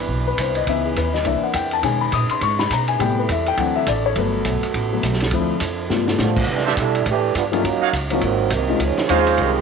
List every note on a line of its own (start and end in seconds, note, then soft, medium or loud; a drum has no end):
0.00 0.66 C3 medium
0.00 0.63 E3 soft
0.00 1.81 E3 medium
0.00 0.63 B3 soft
0.00 0.64 D4 medium
0.00 0.65 D4 medium
0.00 1.23 B4 medium
0.08 0.37 B1 medium
0.08 kick soft
0.27 0.38 B4 medium
0.38 0.66 C2 medium
0.38 0.56 C5 medium
0.38 kick soft
0.38 hi-hat pedal medium
0.38 ride medium
0.55 0.67 D#5 medium
0.55 ride soft
0.67 0.95 C#2 medium
0.67 1.11 E3 soft
0.67 1.12 B3 soft
0.67 1.24 C#4 medium
0.67 1.24 D#4 medium
0.67 1.12 D#4 soft
0.67 0.85 E5 medium
0.67 kick soft
0.67 ride medium
0.85 0.96 G#4 soft
0.96 1.24 D#2 medium
0.96 1.14 B4 medium
0.96 kick soft
0.96 hi-hat pedal medium
0.96 ride medium
1.14 1.25 D#5 medium
1.14 snare soft
1.24 1.41 C2 medium
1.24 1.46 E3 soft
1.24 1.46 A#3 soft
1.24 1.82 C4 medium
1.24 1.82 D4 medium
1.24 1.47 D4 medium
1.24 1.82 A#4 medium
1.24 1.43 E5 medium
1.24 kick soft
1.24 ride medium
1.41 1.54 F#5 medium
1.41 muted upright bass stroke soft
1.53 1.82 E2 medium
1.53 1.72 G5 medium
1.53 kick soft
1.53 hi-hat pedal medium
1.53 ride medium
1.71 1.84 A5 medium
1.71 ride soft
1.83 2.11 B2 medium
1.83 2.04 D#3 soft
1.83 2.98 G#3 medium
1.83 2.04 G#3 soft
1.83 2.98 C#4 medium
1.83 2.05 C#4 medium
1.83 2.98 D#4 medium
1.83 2.98 B4 medium
1.83 2.01 G#5 medium
1.83 kick soft
1.83 ride medium
2.01 2.12 B5 medium
2.12 2.29 A#2 medium
2.12 2.30 D#6 medium
2.12 kick soft
2.12 hi-hat pedal soft
2.12 ride medium
2.29 2.41 C6 medium
2.29 muted upright bass stroke soft
2.29 ride medium
2.41 2.69 G#2 medium
2.41 2.59 C#6 medium
2.41 kick soft
2.41 ride medium
2.59 2.70 B5 medium
2.59 snare medium
2.70 2.98 B2 medium
2.70 2.89 A#5 medium
2.70 kick soft
2.70 hi-hat pedal medium
2.70 ride medium
2.88 2.99 G#5 medium
2.88 ride soft
2.99 3.28 A2 medium
2.99 3.20 C3 soft
2.99 3.57 G3 medium
2.99 3.21 G3 soft
2.99 3.21 B3 medium
2.99 4.14 C4 medium
2.99 3.57 E4 medium
2.99 5.86 A4 medium
2.99 3.17 G5 medium
2.99 kick soft
2.99 ride medium
3.19 3.29 B4 medium
3.29 3.57 E2 medium
3.29 3.47 E5 medium
3.29 kick soft
3.29 hi-hat pedal medium
3.29 ride medium
3.46 3.58 G5 medium
3.46 ride soft
3.57 3.86 D2 medium
3.57 3.79 E3 medium
3.57 4.14 F#3 medium
3.57 3.79 F#3 soft
3.57 3.79 C4 medium
3.57 4.15 D4 medium
3.57 3.76 F#5 medium
3.57 kick soft
3.57 ride medium
3.76 3.86 E5 medium
3.86 4.15 A1 loud
3.86 4.04 D5 medium
3.86 kick soft
3.86 hi-hat pedal medium
3.86 ride medium
4.06 4.16 C#5 medium
4.15 4.44 G1 medium
4.15 5.30 F#3 medium
4.15 4.60 F#3 soft
4.15 4.61 A3 soft
4.15 5.30 B3 medium
4.15 4.61 B3 medium
4.15 5.30 F#4 medium
4.15 5.00 B4 medium
4.15 kick soft
4.15 ride medium
4.45 4.61 B1 medium
4.45 kick soft
4.45 hi-hat pedal medium
4.45 ride medium
4.63 muted upright bass stroke soft
4.63 ride soft
4.74 5.02 A1 medium
4.74 kick soft
4.74 ride medium
4.92 5.02 F#3 soft
4.92 5.02 A3 soft
4.92 5.03 B3 soft
5.03 5.31 B1 loud
5.03 kick soft
5.03 hi-hat pedal medium
5.03 ride medium
5.13 snare soft
5.20 snare soft
5.20 ride medium
5.31 5.60 D2 medium
5.31 5.90 F3 medium
5.31 5.53 F3 medium
5.31 5.90 C4 medium
5.31 5.53 C4 soft
5.31 5.89 D4 medium
5.31 5.54 E4 medium
5.31 kick soft
5.31 ride medium
5.60 5.89 F2 medium
5.60 kick soft
5.60 hi-hat pedal medium
5.60 ride medium
5.88 6.18 G2 medium
5.88 6.47 G3 medium
5.88 6.34 A3 soft
5.88 6.47 B3 medium
5.88 6.34 B3 soft
5.88 6.46 F4 medium
5.88 6.34 F4 medium
5.88 6.47 A4 medium
5.88 snare soft
6.08 snare medium
6.18 6.47 A2 loud
6.18 6.46 D3 medium
6.18 6.46 F3 medium
6.18 6.46 A3 medium
6.18 6.46 B3 medium
6.18 snare medium
6.18 hi-hat pedal medium
6.36 kick medium
6.36 crash medium
6.48 6.76 C3 medium
6.48 6.77 E3 medium
6.48 6.76 G3 medium
6.48 6.77 A3 medium
6.48 6.76 D4 loud
6.48 kick soft
6.58 snare soft
6.65 6.73 D4 medium
6.65 6.73 A4 medium
6.65 6.73 C5 medium
6.65 6.73 E5 medium
6.65 snare soft
6.77 7.05 B2 medium
6.77 7.04 G3 medium
6.77 7.04 D4 medium
6.77 7.04 E4 medium
6.77 7.04 A4 loud
6.77 kick soft
6.77 hi-hat pedal medium
6.77 ride medium
6.95 ride soft
7.06 7.34 A2 medium
7.06 7.33 E3 medium
7.06 7.33 A3 medium
7.06 7.34 D4 medium
7.06 7.34 G4 loud
7.06 kick soft
7.06 ride medium
7.35 7.63 G2 medium
7.35 7.43 G3 medium
7.35 7.43 B3 medium
7.35 7.43 D4 medium
7.35 7.43 F4 loud
7.35 kick soft
7.35 hi-hat pedal medium
7.35 ride medium
7.52 7.62 F#3 medium
7.52 7.63 G3 medium
7.52 7.63 A3 medium
7.52 7.63 A#3 medium
7.52 7.63 C#4 medium
7.52 7.63 D4 medium
7.52 7.63 D#4 medium
7.52 7.63 E4 medium
7.52 7.63 F4 medium
7.52 ride soft
7.64 7.81 D#2 medium
7.64 7.93 F#3 medium
7.64 7.93 A#3 medium
7.64 7.93 C#4 medium
7.64 7.93 D#4 loud
7.64 kick soft
7.64 ride medium
7.81 7.89 D#4 medium
7.81 7.89 F#4 medium
7.81 7.89 C#5 medium
7.81 7.89 F5 medium
7.81 muted upright bass stroke soft
7.93 8.21 C#2 medium
7.93 kick soft
7.93 hi-hat pedal medium
7.93 ride medium
8.10 8.21 F3 medium
8.10 8.21 F#3 medium
8.10 8.22 F#3 medium
8.10 8.21 A#3 medium
8.10 8.22 A#3 medium
8.10 8.21 C4 medium
8.10 8.21 C#4 medium
8.10 8.22 D#4 medium
8.10 8.22 F4 medium
8.10 ride soft
8.21 8.50 G#1 medium
8.21 8.50 D#3 medium
8.21 8.49 F#3 medium
8.21 8.49 A#3 medium
8.21 8.50 C4 medium
8.21 kick soft
8.21 ride medium
8.50 8.79 C2 medium
8.50 8.79 C3 medium
8.50 8.78 D#3 medium
8.50 8.79 F#3 medium
8.50 8.78 A#3 medium
8.50 kick soft
8.50 hi-hat pedal medium
8.50 ride medium
8.68 8.79 G#3 medium
8.68 8.79 C4 medium
8.68 8.79 C#4 medium
8.68 8.79 D#4 medium
8.68 8.80 F4 medium
8.80 8.96 C#2 medium
8.80 9.10 D#3 medium
8.80 9.09 F3 medium
8.80 9.10 G#3 medium
8.80 9.10 C#4 loud
8.80 kick soft
8.80 ride medium
8.97 muted upright bass stroke soft
8.97 snare medium
9.08 9.37 D#2 medium
9.08 9.37 F3 medium
9.08 9.52 G#3 medium
9.08 9.36 C4 medium
9.08 9.53 C#4 medium
9.08 9.52 D#4 medium
9.08 9.37 D#4 medium
9.08 9.53 D#4 medium
9.08 9.53 F4 medium
9.08 9.36 G#4 loud
9.08 9.52 C5 medium
9.08 9.52 C#5 medium
9.08 9.52 F5 loud
9.08 kick soft
9.08 hi-hat pedal medium
9.08 ride medium
9.27 ride soft
9.38 9.61 C2 medium
9.38 9.61 D#3 medium
9.38 9.61 G#3 medium
9.38 9.61 C4 medium
9.38 9.61 G4 medium
9.38 kick soft
9.38 ride medium